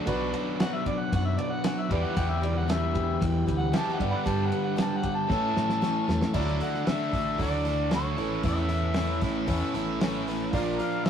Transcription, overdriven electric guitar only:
0.06 B2 F#3 B3 D4 F#4
1.89 E2 B2 E3 G3 E4 G4
3.72 E2 B2 E3 G3 E4 G4
3.98 G2 D3 G3 B3 D4 G4
5.28 A2 E3 A3 C#4 A4
6.34 D3 D4 F#4 A4
6.85 D3 D4 F#4 A4
7.13 D4 F#4 A4
7.38 D3 D4 F#4 A4
7.65 D4 F#4 A4
7.91 D3 D4 F#4 A4
8.16 A2 A3 C#4 E4 A4
8.43 A2 A3 C#4 E4 A4
8.95 A3 C#4 E4 A4
9.22 C#4 E4 A4
9.47 A3 C#4 E4 A4
9.74 C#4 E4 A4
10.00 A2 A3 C#4 E4 A4
10.53 A#2 F3 A#3 D4 F4 A#4
11.05 A#3 D4

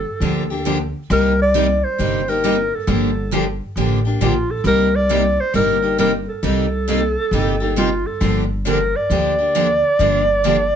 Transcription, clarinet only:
Already playing: A4
1.12 A#4
1.42 D5
1.84 C5
2.30 A#4
2.75 A4
4.23 F4
4.51 A4
4.67 A#4
4.96 D5
5.40 C5
5.55 A#4
6.00 A#4
6.28 A4
7.78 F4
8.07 A4
8.68 A#4
8.96 D5

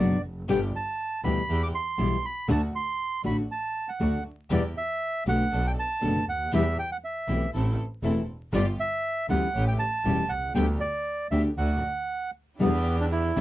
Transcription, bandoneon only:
Already playing: D5
0.50 G5
0.76 A5
1.24 B5
1.63 D6
1.75 C6
2.25 B5
2.51 A5
2.76 C6
3.26 B5
3.51 A5
3.88 F#5
4.53 D5
4.77 E5
5.28 F#5
5.67 G5
5.79 A5
6.29 F#5
6.55 E5
6.79 G5
6.92 F#5
7.04 E5
8.55 D5
8.80 E5
9.30 F#5
9.68 G5
9.79 A5
10.29 F#5
10.55 G5
10.80 D5
11.31 E5
11.58 F#5
12.61 B3
13.01 D4
13.12 E4

